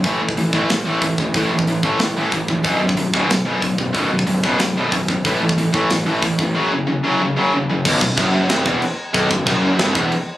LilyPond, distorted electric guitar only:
\new Staff \with { instrumentName = "Distorted electric guitar" } { \clef bass \time 4/4 \key a \mixolydian \tempo 4 = 184 <a, e a>8 <a, e>8 <a, e>8 <a, e a>8 <a, e>8 <a, e a>8 <a, e>8 <a, e>8 | <a, e a>8 <a, e>8 <a, e>8 <a, e a>8 <a, e>8 <a, e a>8 <a, e>8 <a, e>8 | <b,, fis, b,>8 <b,, fis,>8 <b,, fis,>8 <b,, fis, b,>8 <b,, fis,>8 <b,, fis, b,>8 <b,, fis,>8 <b,, fis,>8 | <b,, fis, b,>8 <b,, fis,>8 <b,, fis,>8 <b,, fis, b,>8 <b,, fis,>8 <b,, fis, b,>8 <b,, fis,>8 <b,, fis,>8 |
<a, e a>8 <a, e>8 <a, e>8 <a, e a>8 <a, e>8 <a, e a>8 <a, e>8 <a, e>8 | <fis, cis fis>8 <fis, cis>8 <fis, cis>8 <fis, cis fis>8 <fis, cis>8 <fis, cis fis>8 <fis, cis>8 <fis, cis>8 | \key c \lydian b,,8 b,,8 fis,4 c,8 e,8 r4 | b,,8 b,,8 fis,4 c,8 e,8 r4 | }